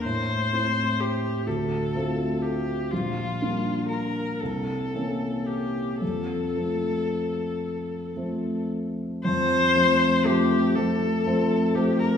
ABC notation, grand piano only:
X:1
M:6/8
L:1/8
Q:3/8=40
K:F
V:1 name="Grand piano"
A,, [A,CE]2 D,, [A,CF]2 | B,,, [G,B,D]2 C,, [E,B,_D]2 | F,, [F,A,C]3 [F,A,C]2 | F,, [F,A,C] [F,A,C] [F,A,C] [F,A,C] [F,A,C] |]